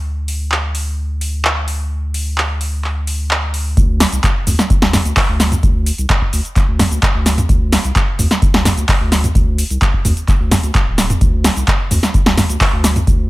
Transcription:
0.00 3.75 D2 medium
0.28 open hi-hat loud
0.52 clap loud
0.75 open hi-hat loud
1.21 open hi-hat loud
1.45 clap loud
1.68 open hi-hat loud
2.14 open hi-hat loud
2.38 clap loud
2.61 open hi-hat loud
2.84 clap soft
3.07 open hi-hat loud
3.31 clap loud
3.54 open hi-hat loud
3.77 4.05 D2 loud
3.77 kick loud
3.77 closed hi-hat medium
3.77 shaker soft
4.00 snare medium
4.00 open hi-hat loud
4.00 shaker medium
4.12 4.20 C2 medium
4.12 closed hi-hat medium
4.12 shaker soft
4.24 kick loud
4.24 clap loud
4.24 closed hi-hat medium
4.24 shaker soft
4.47 4.55 D2 loud
4.47 mid tom medium
4.47 open hi-hat loud
4.47 shaker medium
4.59 snare medium
4.59 closed hi-hat medium
4.59 shaker soft
4.70 kick loud
4.70 closed hi-hat medium
4.70 shaker soft
4.82 4.97 D2 medium
4.82 snare medium
4.93 snare medium
4.93 mid tom medium
4.93 open hi-hat loud
4.93 shaker medium
5.05 5.13 D2 loud
5.05 closed hi-hat medium
5.05 shaker soft
5.17 kick loud
5.17 clap loud
5.17 open hi-hat medium
5.17 shaker soft
5.29 5.57 D2 loud
5.40 snare medium
5.40 open hi-hat loud
5.40 shaker medium
5.52 closed hi-hat medium
5.52 mid tom medium
5.52 shaker soft
5.63 5.92 D2 loud
5.63 kick loud
5.63 closed hi-hat medium
5.63 shaker soft
5.86 open hi-hat loud
5.86 shaker medium
5.98 6.06 C2 medium
5.98 closed hi-hat medium
5.98 shaker soft
6.10 kick loud
6.10 clap loud
6.10 closed hi-hat medium
6.10 shaker soft
6.22 kick medium
6.33 6.41 D2 loud
6.33 open hi-hat loud
6.33 shaker medium
6.45 closed hi-hat medium
6.45 shaker soft
6.56 kick loud
6.56 clap soft
6.56 closed hi-hat medium
6.56 shaker soft
6.68 6.83 D2 medium
6.79 snare medium
6.79 mid tom medium
6.79 open hi-hat loud
6.79 shaker medium
6.91 6.99 D2 loud
6.91 closed hi-hat medium
6.91 shaker soft
7.03 kick loud
7.03 clap loud
7.03 closed hi-hat medium
7.03 shaker soft
7.15 7.43 D2 loud
7.26 snare medium
7.26 open hi-hat loud
7.26 shaker medium
7.38 closed hi-hat medium
7.38 mid tom medium
7.38 shaker soft
7.49 7.78 D2 loud
7.49 kick loud
7.49 closed hi-hat medium
7.49 shaker soft
7.72 snare medium
7.72 open hi-hat loud
7.72 shaker medium
7.84 7.92 C2 medium
7.84 closed hi-hat medium
7.84 shaker soft
7.96 kick loud
7.96 clap loud
7.96 closed hi-hat medium
7.96 shaker soft
8.19 8.27 D2 loud
8.19 mid tom medium
8.19 open hi-hat loud
8.19 shaker medium
8.31 snare medium
8.31 closed hi-hat medium
8.31 shaker soft
8.42 kick loud
8.42 closed hi-hat medium
8.42 shaker soft
8.54 8.69 D2 medium
8.54 snare medium
8.65 snare medium
8.65 mid tom medium
8.65 open hi-hat loud
8.65 shaker medium
8.77 8.85 D2 loud
8.77 closed hi-hat medium
8.77 shaker soft
8.89 kick loud
8.89 clap loud
8.89 open hi-hat medium
8.89 shaker soft
9.01 9.29 D2 loud
9.12 snare medium
9.12 open hi-hat loud
9.12 shaker medium
9.24 closed hi-hat medium
9.24 mid tom medium
9.24 shaker soft
9.35 9.64 D2 loud
9.35 kick loud
9.35 closed hi-hat medium
9.35 shaker soft
9.58 open hi-hat loud
9.58 shaker medium
9.70 9.78 C2 medium
9.70 closed hi-hat medium
9.70 shaker soft
9.82 kick loud
9.82 clap loud
9.82 closed hi-hat medium
9.82 shaker soft
9.94 kick medium
10.05 10.13 D2 loud
10.05 mid tom medium
10.05 open hi-hat loud
10.05 shaker medium
10.17 closed hi-hat soft
10.17 shaker soft
10.28 kick loud
10.28 clap soft
10.28 closed hi-hat medium
10.28 shaker soft
10.40 10.55 D2 medium
10.51 snare medium
10.51 mid tom loud
10.51 open hi-hat loud
10.51 shaker medium
10.63 10.71 D2 loud
10.63 closed hi-hat medium
10.63 shaker soft
10.75 kick loud
10.75 clap loud
10.75 closed hi-hat medium
10.75 shaker soft
10.87 11.15 D1 medium
10.98 snare medium
10.98 open hi-hat loud
10.98 shaker medium
11.10 closed hi-hat medium
11.10 mid tom medium
11.10 shaker soft
11.21 11.50 D2 loud
11.21 kick loud
11.21 closed hi-hat medium
11.21 shaker soft
11.44 snare medium
11.44 open hi-hat loud
11.44 shaker medium
11.56 11.64 C2 medium
11.56 closed hi-hat medium
11.56 shaker soft
11.68 kick loud
11.68 clap loud
11.68 closed hi-hat medium
11.68 shaker soft
11.91 11.99 D2 loud
11.91 mid tom medium
11.91 open hi-hat loud
11.91 shaker medium
12.03 snare medium
12.03 closed hi-hat medium
12.03 shaker soft
12.14 kick loud
12.14 closed hi-hat medium
12.14 shaker soft
12.26 12.41 D2 medium
12.26 snare medium
12.37 snare medium
12.37 mid tom loud
12.37 open hi-hat loud
12.37 shaker medium
12.49 12.57 D2 loud
12.49 closed hi-hat medium
12.49 shaker soft
12.61 kick loud
12.61 clap loud
12.61 open hi-hat medium
12.61 shaker soft
12.73 13.01 D2 loud
12.84 snare medium
12.84 open hi-hat loud
12.84 shaker medium
12.96 closed hi-hat medium
12.96 mid tom medium
12.96 shaker soft
13.07 13.30 D2 loud
13.07 kick loud
13.07 closed hi-hat medium
13.07 shaker soft

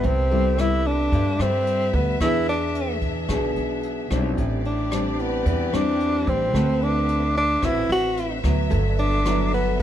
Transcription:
0.00 1.08 C2 loud
0.00 0.27 G3 medium
0.00 0.27 B3 medium
0.00 0.27 E4 medium
0.00 kick medium
0.00 closed hi-hat soft
0.04 1.10 C3 medium
0.04 0.61 C4 loud
0.04 2.19 B4 medium
0.04 4.34 E5 medium
0.31 0.54 G3 medium
0.31 0.54 B3 medium
0.31 0.54 E4 medium
0.31 1.22 A4 medium
0.31 closed hi-hat soft
0.58 1.35 G3 medium
0.58 1.35 B3 medium
0.58 1.36 E4 medium
0.58 0.88 E4 loud
0.58 cross-stick medium
0.58 closed hi-hat soft
0.85 1.43 D4 loud
0.85 closed hi-hat soft
1.12 1.37 G2 loud
1.12 2.18 G2 medium
1.12 kick medium
1.12 closed hi-hat soft
1.39 1.90 G2 loud
1.39 2.16 G3 medium
1.39 1.96 C4 loud
1.39 2.17 E4 medium
1.39 cross-stick medium
1.39 closed hi-hat soft
1.67 closed hi-hat soft
1.93 2.20 D2 loud
1.93 2.21 B3 medium
1.93 kick medium
1.93 closed hi-hat soft
2.20 3.25 E2 loud
2.20 3.27 E3 medium
2.20 3.25 B3 medium
2.20 4.35 D4 medium
2.20 3.25 D4 medium
2.20 2.46 E4 loud
2.20 4.35 G#4 medium
2.20 3.26 G#4 medium
2.20 kick medium
2.20 cross-stick medium
2.20 closed hi-hat soft
2.48 2.99 D4 medium
2.48 closed hi-hat soft
2.75 closed hi-hat soft
3.02 kick medium
3.02 closed hi-hat soft
3.29 3.54 B1 medium
3.29 4.35 B2 medium
3.29 4.06 B3 medium
3.29 4.07 D4 medium
3.29 4.07 G#4 medium
3.29 kick medium
3.29 cross-stick medium
3.29 closed hi-hat soft
3.56 4.07 B1 medium
3.56 closed hi-hat soft
3.83 closed hi-hat soft
4.11 4.37 B1 loud
4.11 4.60 G3 medium
4.11 4.61 C4 medium
4.11 4.61 D4 medium
4.11 cross-stick medium
4.11 closed hi-hat soft
4.37 5.42 A1 loud
4.37 5.43 A2 medium
4.37 8.67 C4 medium
4.37 6.52 G4 medium
4.37 8.67 B4 medium
4.37 6.52 D5 loud
4.37 kick medium
4.37 closed hi-hat soft
4.65 5.22 D4 medium
4.65 closed hi-hat soft
4.92 5.69 G3 medium
4.92 5.69 C4 medium
4.92 5.69 D4 medium
4.92 cross-stick medium
4.92 closed hi-hat soft
5.19 5.47 B3 medium
5.19 6.10 E4 medium
5.19 closed hi-hat soft
5.46 5.71 E2 loud
5.46 6.52 E3 medium
5.46 5.76 B3 medium
5.46 kick medium
5.46 closed hi-hat soft
5.73 6.24 E2 medium
5.73 6.50 G3 medium
5.73 6.50 C4 medium
5.73 6.50 D4 medium
5.73 6.30 D4 loud
5.73 cross-stick medium
5.73 closed hi-hat soft
6.00 closed hi-hat soft
6.27 6.54 A1 loud
6.27 6.84 C4 medium
6.27 kick medium
6.27 closed hi-hat soft
6.54 7.59 D2 loud
6.54 7.60 D3 medium
6.54 7.27 C4 medium
6.54 7.27 F#4 medium
6.54 9.82 F#4 medium
6.54 7.27 B4 medium
6.54 9.82 E5 loud
6.54 kick medium
6.54 cross-stick medium
6.54 closed hi-hat soft
6.82 7.36 D4 loud
6.82 closed hi-hat soft
7.09 closed hi-hat soft
7.36 7.67 D4 loud
7.36 closed hi-hat soft
7.62 7.88 A1 medium
7.62 8.68 A2 medium
7.62 8.40 C4 medium
7.62 7.91 E4 loud
7.62 8.40 F#4 medium
7.62 8.40 B4 medium
7.62 kick medium
7.62 cross-stick medium
7.62 closed hi-hat soft
7.89 8.40 A1 medium
7.89 8.41 F#4 loud
7.89 closed hi-hat soft
8.17 closed hi-hat soft
8.43 8.72 D2 loud
8.43 9.21 F#3 medium
8.43 9.21 B3 medium
8.43 9.21 E4 medium
8.43 kick medium
8.43 cross-stick medium
8.43 closed hi-hat soft
8.70 9.75 G1 loud
8.70 9.76 G2 medium
8.70 9.82 B3 medium
8.70 9.62 A4 medium
8.70 9.82 A4 medium
8.70 kick medium
8.70 closed hi-hat soft
8.90 9.79 D5 soft
8.98 9.49 D4 medium
8.98 closed hi-hat soft
9.25 9.79 F#3 medium
9.25 9.79 B3 medium
9.25 9.80 E4 medium
9.25 cross-stick medium
9.25 closed hi-hat medium
9.53 9.78 B3 medium
9.53 closed hi-hat soft
9.79 9.82 D3 medium

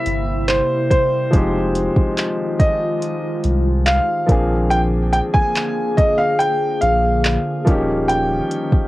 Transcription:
0.00 1.30 C3 medium
0.00 1.28 G3 medium
0.00 1.29 A#3 medium
0.00 1.30 A#3 medium
0.00 1.29 C4 medium
0.00 1.30 E4 medium
0.00 1.31 G4 medium
0.00 0.44 E5 loud
0.06 0.61 G1 medium
0.06 closed hi-hat medium
0.48 0.89 C5 medium
0.48 clap loud
0.48 closed hi-hat medium
0.91 2.56 C5 medium
0.91 kick medium
0.91 closed hi-hat medium
1.30 1.88 F1 loud
1.30 4.26 D#3 medium
1.30 4.24 F3 medium
1.30 4.24 G#3 medium
1.30 4.26 G#3 medium
1.30 4.25 C4 medium
1.30 4.26 D#4 medium
1.30 4.26 F4 medium
1.30 kick loud
1.30 closed hi-hat medium
1.36 4.26 G4 medium
1.75 closed hi-hat medium
1.96 2.05 C2 soft
1.96 kick medium
2.18 clap loud
2.18 closed hi-hat medium
2.60 3.40 D#5 medium
2.60 kick loud
2.60 closed hi-hat medium
3.02 closed hi-hat medium
3.44 3.99 C2 loud
3.44 closed hi-hat medium
3.86 4.73 F5 medium
3.86 clap loud
3.86 closed hi-hat medium
4.26 5.21 A#1 medium
4.26 7.64 D3 medium
4.26 7.62 F3 medium
4.26 7.62 A#3 medium
4.26 7.64 A#3 medium
4.26 7.63 C4 medium
4.26 7.64 D4 medium
4.26 7.64 G#4 medium
4.26 kick loud
4.26 closed hi-hat medium
4.32 7.64 G#4 medium
4.70 4.80 G5 loud
4.70 closed hi-hat medium
5.13 5.18 G5 medium
5.13 closed hi-hat medium
5.34 5.43 A#1 soft
5.34 5.93 G#5 loud
5.34 kick medium
5.56 clap loud
5.56 closed hi-hat medium
5.97 6.19 D#5 medium
5.97 kick loud
5.97 closed hi-hat medium
6.18 6.38 F5 medium
6.39 6.79 G5 loud
6.39 closed hi-hat medium
6.81 7.38 A#1 medium
6.81 8.12 F5 medium
6.81 closed hi-hat medium
7.25 clap loud
7.25 closed hi-hat medium
7.65 8.40 D#1 medium
7.65 8.88 D#3 medium
7.65 8.88 F3 medium
7.65 8.88 G3 medium
7.65 8.88 A#3 medium
7.65 8.88 C#4 medium
7.65 8.88 D#4 medium
7.65 kick loud
7.65 closed hi-hat medium
7.70 8.88 G4 medium
8.08 8.88 G5 medium
8.08 closed hi-hat medium
8.51 closed hi-hat medium
8.72 8.81 D#1 soft
8.72 kick medium

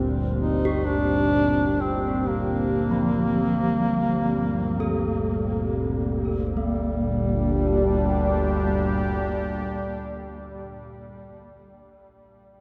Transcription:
0.00 6.56 G1 medium
0.00 6.57 D2 medium
0.00 6.55 A#2 medium
0.00 6.58 G3 medium
0.00 1.66 A#3 medium
0.00 6.59 A#3 medium
0.00 6.57 C4 medium
0.00 6.57 G4 medium
0.40 0.88 D#4 loud
0.65 6.36 G4 medium
0.86 1.82 D4 loud
1.81 2.30 C4 medium
2.28 6.09 A#3 loud
2.91 5.00 F3 medium
4.80 10.50 A4 medium
6.56 10.39 G1 medium
6.56 10.39 D2 medium
6.56 10.38 A#2 medium
6.56 10.37 G3 loud
6.56 10.38 A#3 medium
6.72 10.54 G3 medium
6.85 10.66 D4 medium
6.98 10.80 G4 medium

